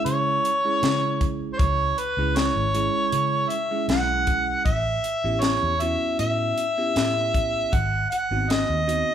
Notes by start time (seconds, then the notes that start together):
Already playing: G#3 C#4 E4 G#4
0.05 C#3 C#5, closed hi-hat
0.45 closed hi-hat
0.65 G#3 C#4 E4 G#4
0.83 C#3, snare, closed hi-hat
1.21 kick, closed hi-hat
1.53 C5
1.59 C#2 C#5, kick, closed hi-hat
1.98 B4, closed hi-hat
2.17 C#2 G#3 C#4 E4 G#4
2.36 C#5, snare, closed hi-hat
2.55 G#1
2.74 G#3 C#4 E4 G#4, closed hi-hat
3.12 C#3, closed hi-hat
3.49 E5, closed hi-hat
3.71 G#3 C#4 E4 G#4
3.88 B1 F#5, snare, closed hi-hat
4.27 kick, closed hi-hat
4.65 A1 E5, kick, closed hi-hat
5.04 closed hi-hat
5.24 A1 B3 C#4 E4 G4
5.41 C#5, snare, closed hi-hat
5.63 E2
5.80 B3 C#4 E4 F#4 E5, closed hi-hat
6.19 A2 E5, closed hi-hat
6.58 closed hi-hat
6.78 B3 C#4 E4 G4
6.96 A2, snare, closed hi-hat
7.34 kick, closed hi-hat
7.73 G#1 F#5, kick, closed hi-hat
8.10 F#5, closed hi-hat
8.31 G#1 B3 C4 D#4 F#4
8.50 D#5, snare, closed hi-hat
8.69 D#2
8.88 B3 C4 D#4 F#4, closed hi-hat